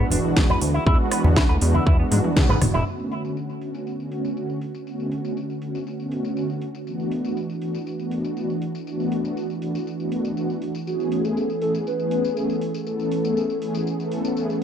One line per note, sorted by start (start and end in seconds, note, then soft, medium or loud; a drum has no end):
0.00 0.33 E3 medium
0.00 0.34 G#3 medium
0.00 0.34 B3 medium
0.00 0.34 D4 medium
0.00 0.34 F#4 medium
0.10 0.21 E1 loud
0.10 0.18 D4 medium
0.10 open hi-hat loud
0.10 low conga medium
0.24 0.34 B1 soft
0.36 0.46 B1 medium
0.36 0.46 E3 medium
0.36 0.46 G#3 medium
0.36 0.47 B3 medium
0.36 0.47 D4 medium
0.36 0.47 F#4 loud
0.36 kick loud
0.36 snare loud
0.50 0.59 B4 medium
0.50 low conga medium
0.61 0.79 D2 medium
0.61 open hi-hat medium
0.74 0.84 E4 medium
0.86 0.96 E2 medium
0.86 1.21 E3 medium
0.86 1.21 G#3 medium
0.86 1.21 B3 medium
0.86 1.21 D4 medium
0.86 0.96 E4 medium
0.86 1.22 F#4 medium
0.86 kick loud
1.11 1.21 B4 medium
1.11 cross-stick medium
1.11 open hi-hat loud
1.23 1.42 E2 medium
1.23 1.34 E3 medium
1.23 1.34 G#3 medium
1.23 1.34 B3 medium
1.23 1.28 B3 medium
1.23 1.34 D4 medium
1.23 1.34 F#4 loud
1.23 high conga medium
1.23 low conga medium
1.36 1.43 E4 medium
1.36 kick loud
1.36 snare loud
1.49 1.58 D2 loud
1.49 1.55 B4 medium
1.61 1.80 E2 loud
1.61 1.77 E3 medium
1.61 1.77 G#3 medium
1.61 1.77 B3 medium
1.61 1.77 D4 medium
1.61 1.78 F#4 medium
1.61 open hi-hat medium
1.74 1.83 E4 medium
1.74 high conga medium
1.86 2.04 E2 medium
1.86 1.96 E4 medium
1.86 kick loud
1.99 2.33 E3 medium
1.99 2.33 G#3 medium
1.99 2.34 B3 medium
1.99 2.06 B3 medium
1.99 2.34 D4 medium
1.99 2.34 F#4 medium
2.11 2.21 G#2 medium
2.11 2.18 D4 medium
2.11 open hi-hat loud
2.11 high tom medium
2.24 2.34 E2 soft
2.24 high tom medium
2.36 2.46 E2 medium
2.36 2.46 E3 medium
2.36 2.46 G#3 medium
2.36 2.46 B3 medium
2.36 2.47 D4 medium
2.36 2.47 F#4 loud
2.36 kick loud
2.36 snare loud
2.36 mid tom medium
2.49 2.58 G#2 medium
2.49 2.58 B4 medium
2.49 mid tom medium
2.49 low conga medium
2.62 2.72 E1 soft
2.62 cross-stick medium
2.62 mid tom medium
2.62 open hi-hat medium
2.62 high conga medium
2.62 low conga medium
2.74 2.83 E1 medium
2.74 2.83 E4 loud
2.74 mid tom medium
2.86 3.21 D3 medium
2.86 3.21 A3 medium
2.86 3.21 B3 medium
2.86 3.21 C#4 medium
2.86 3.22 F#4 medium
2.86 tambourine medium
3.00 tambourine soft
3.12 open hi-hat medium
3.24 3.34 D3 medium
3.24 3.34 A3 medium
3.24 3.34 B3 medium
3.24 3.34 C#4 medium
3.24 3.34 F#4 medium
3.24 tambourine medium
3.37 tambourine soft
3.50 tambourine soft
3.61 3.77 D3 medium
3.61 3.78 A3 medium
3.61 3.78 B3 medium
3.61 3.78 C#4 medium
3.61 3.78 F#4 medium
3.61 open hi-hat medium
3.74 tambourine medium
3.87 tambourine soft
3.99 4.34 D3 medium
3.99 4.34 A3 medium
3.99 4.34 B3 medium
3.99 4.34 C#4 medium
3.99 4.34 F#4 medium
3.99 tambourine soft
4.12 open hi-hat loud
4.25 tambourine medium
4.36 4.46 D3 medium
4.36 4.47 A3 medium
4.36 4.47 B3 medium
4.36 4.47 C#4 medium
4.36 4.47 F#4 loud
4.36 tambourine soft
4.50 tambourine soft
4.61 open hi-hat medium
4.75 tambourine medium
4.86 5.21 D3 medium
4.86 5.21 A3 medium
4.86 5.21 B3 medium
4.86 5.22 C#4 medium
4.86 5.22 F#4 medium
4.86 tambourine soft
5.00 tambourine soft
5.12 open hi-hat medium
5.24 5.34 D3 medium
5.24 5.34 A3 medium
5.24 5.34 B3 medium
5.24 5.34 C#4 medium
5.24 5.34 F#4 medium
5.24 tambourine medium
5.37 tambourine soft
5.50 tambourine soft
5.61 5.77 D3 medium
5.61 5.78 A3 medium
5.61 5.78 B3 medium
5.61 5.78 C#4 medium
5.61 5.78 F#4 medium
5.61 open hi-hat medium
5.75 tambourine medium
5.87 tambourine soft
5.99 6.34 D3 medium
5.99 6.34 A3 medium
5.99 6.34 B3 medium
5.99 6.34 C#4 medium
5.99 6.34 F#4 medium
5.99 tambourine soft
6.12 open hi-hat loud
6.25 tambourine medium
6.36 6.47 D3 medium
6.36 6.47 A3 medium
6.36 6.47 B3 medium
6.36 6.47 C#4 medium
6.36 6.47 F#4 medium
6.36 tambourine medium
6.50 tambourine soft
6.62 open hi-hat medium
6.75 tambourine medium
6.86 7.21 E3 medium
6.86 7.21 A3 medium
6.86 7.21 B3 medium
6.86 7.22 D4 medium
6.86 7.22 F#4 medium
6.86 tambourine soft
7.00 tambourine soft
7.12 open hi-hat loud
7.24 7.34 E3 medium
7.24 7.34 A3 medium
7.24 7.34 B3 medium
7.24 7.34 D4 medium
7.24 7.34 F#4 medium
7.24 tambourine medium
7.37 tambourine soft
7.50 tambourine soft
7.61 7.77 E3 medium
7.61 7.77 A3 medium
7.61 7.78 B3 medium
7.61 7.78 D4 medium
7.61 7.78 F#4 medium
7.61 open hi-hat medium
7.75 tambourine medium
7.87 tambourine soft
7.99 8.33 E3 medium
7.99 8.34 A3 medium
7.99 8.34 B3 medium
7.99 8.34 D4 medium
7.99 8.34 F#4 medium
7.99 tambourine soft
8.11 open hi-hat loud
8.24 tambourine medium
8.36 8.47 E3 medium
8.36 8.47 A3 medium
8.36 8.47 B3 medium
8.36 8.47 D4 medium
8.36 8.47 F#4 loud
8.36 tambourine soft
8.50 tambourine soft
8.62 open hi-hat medium
8.75 tambourine medium
8.86 9.21 E3 medium
8.86 9.21 A3 medium
8.86 9.21 B3 medium
8.86 9.22 D4 medium
8.86 9.22 F#4 medium
8.86 tambourine soft
9.00 tambourine soft
9.12 open hi-hat loud
9.24 9.34 E3 medium
9.24 9.34 A3 medium
9.24 9.34 B3 medium
9.24 9.34 D4 medium
9.24 9.34 F#4 medium
9.24 tambourine medium
9.37 tambourine soft
9.50 tambourine soft
9.61 9.77 E3 medium
9.61 9.78 A3 medium
9.61 9.78 B3 medium
9.61 9.78 D4 medium
9.61 9.78 F#4 medium
9.61 open hi-hat medium
9.75 tambourine medium
9.87 tambourine soft
9.99 10.33 E3 medium
9.99 10.34 A3 medium
9.99 10.34 B3 medium
9.99 10.34 D4 medium
9.99 10.34 F#4 medium
9.99 tambourine soft
10.12 open hi-hat loud
10.25 tambourine medium
10.36 10.46 E3 medium
10.36 10.46 A3 medium
10.36 10.47 B3 medium
10.36 10.47 D4 medium
10.36 10.47 F#4 loud
10.36 tambourine soft
10.50 tambourine soft
10.62 open hi-hat medium
10.75 tambourine medium
10.86 11.21 E3 medium
10.86 11.21 A3 medium
10.86 11.21 B3 medium
10.86 11.22 C#4 medium
10.86 11.26 F#4 medium
10.86 11.22 G#4 medium
10.86 tambourine soft
11.00 tambourine soft
11.12 open hi-hat loud
11.24 11.34 E3 medium
11.24 11.34 A3 medium
11.24 11.34 B3 medium
11.24 11.34 C#4 medium
11.24 11.34 G#4 medium
11.24 11.61 A4 loud
11.24 tambourine medium
11.37 tambourine soft
11.50 tambourine soft
11.61 11.77 E3 medium
11.61 11.77 A3 medium
11.61 11.78 B3 medium
11.61 11.78 C#4 medium
11.61 11.78 G#4 medium
11.61 11.73 A4 loud
11.61 open hi-hat medium
11.75 tambourine medium
11.87 12.38 B4 loud
11.87 tambourine soft
11.99 12.33 E3 medium
11.99 12.34 A3 medium
11.99 12.34 B3 medium
11.99 12.34 C#4 medium
11.99 12.34 G#4 medium
11.99 tambourine soft
12.11 open hi-hat loud
12.25 tambourine medium
12.36 12.46 E3 medium
12.36 12.47 A3 medium
12.36 12.47 B3 medium
12.36 12.47 C#4 medium
12.36 12.47 G#4 medium
12.36 12.86 A4 loud
12.36 tambourine soft
12.50 tambourine soft
12.61 open hi-hat medium
12.74 tambourine medium
12.86 13.21 E3 medium
12.86 13.21 A3 medium
12.86 13.21 B3 medium
12.86 13.21 C#4 medium
12.86 13.21 A4 medium
12.86 14.33 A4 loud
12.86 tambourine soft
13.00 tambourine soft
13.12 open hi-hat medium
13.23 13.34 E3 medium
13.23 13.34 A3 medium
13.23 13.34 B3 medium
13.23 13.34 C#4 medium
13.23 13.34 G#4 medium
13.23 tambourine medium
13.37 tambourine soft
13.50 tambourine soft
13.61 13.77 E3 medium
13.61 13.77 A3 medium
13.61 13.77 B3 medium
13.61 13.78 C#4 medium
13.61 13.78 G#4 medium
13.61 open hi-hat medium
13.75 tambourine medium
13.87 tambourine soft
13.98 14.33 E3 medium
13.98 14.33 A3 medium
13.98 14.33 B3 medium
13.98 14.34 C#4 medium
13.98 14.34 A4 medium
13.98 tambourine soft
14.12 open hi-hat medium
14.25 tambourine medium
14.36 14.46 E3 medium
14.36 14.46 A3 medium
14.36 14.46 B3 medium
14.36 14.47 C#4 medium
14.36 14.47 G#4 loud
14.36 tambourine soft
14.50 tambourine soft